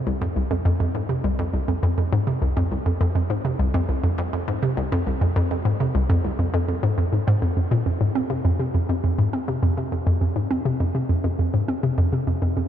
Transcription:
synth arpeggio sound
0.07 C2
0.21 F2
0.36 C2
0.51 F2
0.65 F2
0.80 F2
0.95 G#2
1.09 C3
1.24 C2
1.39 F2
1.53 C2
1.68 F2
1.83 F2
1.98 F2
2.13 G#2
2.27 C3
2.42 C2
2.57 F2
2.71 C2
2.86 F2
3.01 F2
3.15 F2
3.30 G#2
3.45 C3
3.59 C2
3.74 F2
3.89 C2
4.04 F2
4.18 F2
4.33 F2
4.48 G#2
4.63 C3
4.77 C2
4.92 F2
5.07 C2
5.21 F2
5.36 F2
5.51 F2
5.65 G#2
5.80 C3
5.95 C2
6.10 F2
6.24 C2
6.39 F2
6.54 F2
6.68 F2
6.83 G#2
6.98 F2
7.13 G#2
7.28 G#2
7.42 F2
7.57 F2
7.71 A#2
7.86 F2
8.01 G#2
8.15 C4
8.30 C3
8.45 F2
8.59 C3
8.74 F2
8.89 F2
9.04 F2
9.19 G#2
9.33 C4
9.48 C3
9.63 F2
9.77 C3
9.92 F2
10.07 F2
10.21 F2
10.36 G#2
10.51 C4
10.65 C3
10.80 F2
10.95 C3
11.09 F2
11.24 F2
11.39 F2
11.54 G#2
11.68 C4
11.83 C3
11.98 F2
12.13 C3
12.27 F2
12.42 F2
12.57 F2

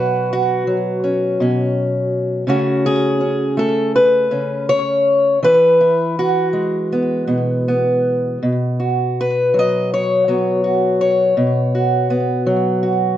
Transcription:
steel-string acoustic guitar
Already playing: B2 F#3 F#4 B4
0.33 F#4
0.67 F#3
1.04 C#4
1.40 B2 C#4
2.47 C#3 A3 C#4 F#4
2.86 G#4
3.21 C#4
3.57 A3 A4
3.96 B4
4.31 C#3 C#4
4.69 C#5
5.43 E3 B4
5.81 E4
6.19 F#4
6.53 G#3
6.92 B3
7.27 B2 B3
7.68 B3
8.43 B2
8.80 F#4
9.21 B4
9.54 F#3
9.59 D#5
9.94 C#5
10.28 F#3 B3
10.64 F#4
11.01 C#5
11.37 B2
11.75 F#4
12.10 B3
12.47 F#3
12.83 F#4

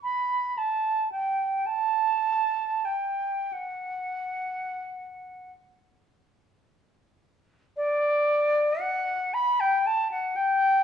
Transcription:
flute
0.03 B5
0.58 A5
1.12 G5
1.66 A5
2.85 G5
3.53 F#5
7.76 D5
8.80 F#5
9.34 B5
9.60 G5
9.86 A5
10.11 F#5
10.36 G5

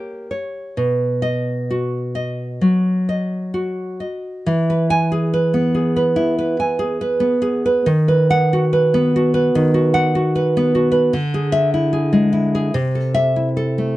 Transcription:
nylon-string guitar
Already playing: A#3 G4 C#5
0.31 C#5
0.77 B2
1.22 D#5
1.70 F#4
2.15 D#5
2.61 F#3
3.09 D#5
3.54 F#4
4.00 D#5
4.46 E3
4.70 B4
4.90 G#5
5.12 G#4
5.34 B4
5.54 B3
5.75 G#4
5.96 B4
6.16 E4
6.39 B4
6.60 G#5
6.79 G#4
7.01 B4
7.20 B3
7.42 G#4
7.66 B4
7.86 D#3
8.08 B4
8.30 F#5
8.53 F#4
8.73 B4
8.94 B3
9.16 F#4
9.34 B4
9.55 D#3
9.74 F#4
9.94 F#5
10.15 F#4
10.36 B4
10.57 B3
10.75 F#4
10.92 B4
11.13 D3
11.34 G#4
11.52 E5
11.74 E4
11.93 G#4
12.13 G#3
12.33 E4
12.55 G#4
12.74 C3
12.95 A4
13.14 E5
13.36 E4
13.57 A4
13.78 A3

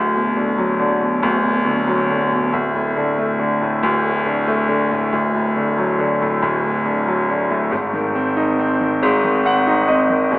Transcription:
grand piano
Already playing: D1 D2
0.15 B2
0.37 D3
0.58 F#3
0.79 D3
1.01 B2
1.23 D1 D2
1.44 B2
1.65 D3
1.87 F#3
2.09 D3
2.32 B2
2.53 D1 D2
2.75 A2
2.96 D3
3.18 A3
3.39 D3
3.61 A2
3.83 D1 D2
4.04 A2
4.26 D3
4.48 A3
4.69 D3
4.91 A2
5.12 D1 D2
5.35 A2
5.56 D3
5.78 F#3
5.99 D3
6.22 A2
6.42 D1 D2
6.64 A2
6.85 D3
7.08 F#3
7.29 D3
7.50 A2
7.71 G#1 G#2
7.93 D#3
8.15 C4
8.36 D#4
8.59 C4
8.80 D#3
9.02 G#1 G#2
9.24 D#3
9.45 C4 F#5
9.67 D#4
9.88 C4 D#5
10.10 D#3
10.31 E1 E2

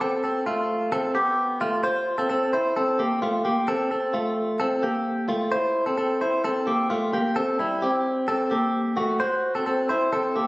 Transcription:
clean electric guitar
0.01 C4 A4
0.24 C4 A4
0.46 A3 F4
0.92 C4 A4
1.15 B3 G4
1.61 A3 F4
1.83 F4 C5
2.18 C4 A4
2.30 C4 A4
2.53 E4 C5
2.76 C4 A4
2.99 A#3 G4
3.22 A3 F4
3.45 A#3 G4
3.68 C4 A4
3.91 C4 A4
4.14 A3 F4
4.60 C4 A4
4.83 A#3 G4
5.29 A3 F4
5.52 E4 C5
5.86 C4 A4
5.98 C4 A4
6.21 E4 C5
6.44 C4 A4
6.67 A#3 G4
6.90 A3 F4
7.13 A#3 G4
7.36 C4 A4
7.59 G3 E4
7.82 C4 G4
8.28 C4 A4
8.51 A#3 G4
8.97 A3 F#4
9.20 F#4 C5
9.55 C4 A4
9.66 C4 A4
9.89 E4 C5
10.13 C4 A4
10.36 A#3 G4

